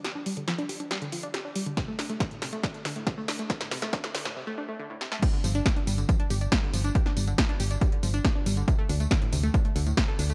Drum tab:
CC |----------------|----------------|----------------|x---------------|
HH |x-oxxxoxxxoxx-ox|x-oxxxoxxxoxx-ox|x-oxxxox--------|x-oxxxoxxxoxx-ox|
TB |----------------|----------------|----------------|x-xxx-xxx-xxx-xx|
SD |o---o---o---o---|o-o-o-o-o-o-o-o-|oooooooo------oo|----o-------o---|
BD |----------------|o---o---o---o---|o---o-----------|o---o---o---o---|

CC |----------------|----------------|
HH |x-oxxxoxxxoxx-ox|x-oxxxoxxxoxx-ox|
TB |x-xxx-xxx-xxx-xx|x-xxx-xxx-xxx-xx|
SD |-o--o-------o---|----o-------o---|
BD |o---o---o---o---|o---o---o---o---|